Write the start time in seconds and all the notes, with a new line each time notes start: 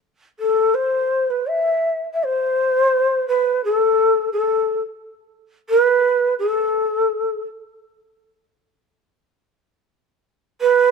0.39 A4
0.74 C5
1.30 B4
1.49 E5
2.14 E5
2.24 C5
3.28 B4
3.64 A4
4.32 A4
5.69 B4
6.39 A4
10.61 B4